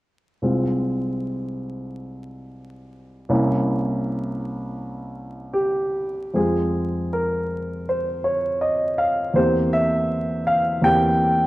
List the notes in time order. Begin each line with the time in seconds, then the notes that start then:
0.42 C2 G#3 C4 F4
3.29 C2 A#3 C#4 E4
5.53 G4
6.34 F2 G#3 C4 F4 G#4
7.13 A#4
7.89 C5
8.24 C#5
8.61 D#5
8.98 F5
9.34 E2 A#3 C4 G4 C5
9.73 E5
10.47 F5
10.82 E2 A#3 C4 G4 G5